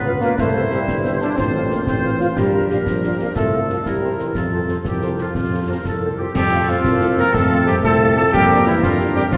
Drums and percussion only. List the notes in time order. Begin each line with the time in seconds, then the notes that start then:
0.21 snare
0.38 concert bass drum, snare
0.71 snare
0.88 concert bass drum, snare
1.05 snare
1.21 snare
1.38 concert bass drum, snare
1.71 snare
1.87 concert bass drum, snare
2.21 snare
2.37 concert bass drum, snare, crash
2.70 snare
2.87 concert bass drum, snare
3.03 snare
3.19 snare
3.36 concert bass drum, snare
3.69 snare
3.86 concert bass drum, snare
4.19 snare
4.35 concert bass drum, snare
4.68 snare
4.85 concert bass drum, snare
5.01 snare
5.18 snare
5.35 concert bass drum, snare
5.85 concert bass drum, snare
6.35 concert bass drum, snare, crash
6.68 snare
6.84 concert bass drum, snare
7.01 snare
7.18 snare
7.34 concert bass drum, snare
7.67 snare
7.84 concert bass drum, snare
8.17 snare
8.34 concert bass drum, snare
8.67 snare
8.83 concert bass drum, snare
9.00 snare
9.16 snare
9.32 concert bass drum, snare